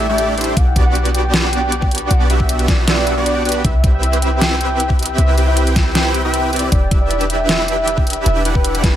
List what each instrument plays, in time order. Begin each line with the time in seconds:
Already playing: 808-style bass A1, harp E4 A4, soft synth lead E5
0.00 harp G4
0.09 supersaw synth A3 D4 E4 G4 D5, harp G5
0.18 harp G4, closed hi-hat
0.28 harp A4
0.37 supersaw synth A3 D4 E4 G4 C5, harp E4, closed hi-hat
0.41 closed hi-hat
0.44 harp E4, closed hi-hat
0.56 808-style bass B1, supersaw synth B3 D4 F#4 G4 D5, soft synth lead F#5, kick, closed hi-hat
0.67 harp G5
0.76 supersaw synth B3 D4 F#4 G4 D5, harp G4, kick, closed hi-hat
0.86 harp B4, soft synth lead F#5
0.95 harp F#4, closed hi-hat
1.05 harp F#4, closed hi-hat
1.14 harp G4, soft synth lead G5, closed hi-hat
1.24 harp G5
1.33 harp G4, snare, closed hi-hat
1.44 harp B4
1.53 harp F#4, closed hi-hat
1.63 harp F#4
1.72 harp G4, closed hi-hat
1.82 harp G5, kick
1.91 supersaw synth B3 D4 F#4 G4 D5, harp G4, closed hi-hat
1.95 closed hi-hat
1.98 harp B4, closed hi-hat
2.10 808-style bass B1, harp F#4, soft synth lead F#5, closed hi-hat
2.30 supersaw synth B3 D4 F#4 G4 E5, harp G4, closed hi-hat
2.40 soft synth lead E5, harp G5, kick
2.49 harp G4, closed hi-hat
2.59 harp B4, closed hi-hat
2.68 harp F#4, soft synth lead D5, kick, snare, closed hi-hat
2.78 harp F#4
2.87 harp G4, snare, closed hi-hat
2.97 harp G5
3.07 harp B4, closed hi-hat
3.17 supersaw synth B3 D4 F#4 G4 D5, harp D5
3.26 harp F#4, closed hi-hat
3.36 harp G5
3.45 supersaw synth B3 D4 F#4 G4 B4, harp F#4, closed hi-hat
3.49 closed hi-hat
3.52 harp G5, closed hi-hat
3.64 808-style bass C2, supersaw synth C4 E4 G4 B4 E5, harp E4, soft synth lead E5, kick, closed hi-hat
3.74 harp E4
3.84 supersaw synth C4 E4 G4 B4 E5, harp G4, kick, closed hi-hat
3.94 soft synth lead E5, harp G5
4.03 harp E5, closed hi-hat
4.13 harp B4, closed hi-hat
4.22 harp E4, soft synth lead G5, closed hi-hat
4.32 harp E4
4.41 harp G4, snare, closed hi-hat
4.51 harp G5
4.61 harp E5, closed hi-hat
4.71 harp B4
4.80 harp E4, closed hi-hat
4.90 kick
4.99 supersaw synth C4 E4 G4 B4 E5, harp G4, closed hi-hat
5.03 closed hi-hat
5.06 harp G5, closed hi-hat
5.18 808-style bass C2, soft synth lead E5, harp E5, closed hi-hat
5.29 harp B4
5.38 supersaw synth C4 E4 G4 B4 G5, harp E4, closed hi-hat
5.48 harp E4, soft synth lead E5
5.57 harp G4, closed hi-hat
5.67 harp G5, closed hi-hat
5.76 harp E5, soft synth lead G5, kick, snare, closed hi-hat
5.86 harp B4
5.95 harp E4, snare, closed hi-hat
6.05 harp E4
6.14 harp G4, closed hi-hat
6.25 supersaw synth C4 E4 G4 B4 E5, harp G5
6.34 harp E5, closed hi-hat
6.44 harp B4
6.53 supersaw synth C4 E4 G4 B4 D5, harp E4, closed hi-hat
6.56 closed hi-hat
6.59 harp E4, closed hi-hat
6.72 808-style bass E1, supersaw synth D4 E4 G4 B4 E5, harp G4, soft synth lead D5, kick, closed hi-hat
6.82 harp G5
6.91 supersaw synth D4 E4 G4 B4 E5, harp E5, kick, closed hi-hat
7.01 harp B4, soft synth lead D5
7.10 harp E4, closed hi-hat
7.21 harp E4, closed hi-hat
7.30 harp G4, soft synth lead E5, closed hi-hat
7.40 harp G5
7.49 harp E5, snare, closed hi-hat
7.59 harp B4
7.68 harp E4, closed hi-hat
7.78 harp E4
7.88 harp G4, closed hi-hat
7.98 harp G5, kick
8.07 supersaw synth D4 E4 G4 B4 E5, harp E5, closed hi-hat
8.10 closed hi-hat
8.13 harp B4, closed hi-hat
8.26 808-style bass E1, harp E4, soft synth lead E5, closed hi-hat
8.36 harp E4
8.45 supersaw synth D4 E4 G4 B4 F#5, harp G4, closed hi-hat
8.55 soft synth lead B4, harp G5, kick
8.64 harp E5, closed hi-hat
8.75 harp B4, closed hi-hat
8.83 harp E4, soft synth lead B4, kick, snare, closed hi-hat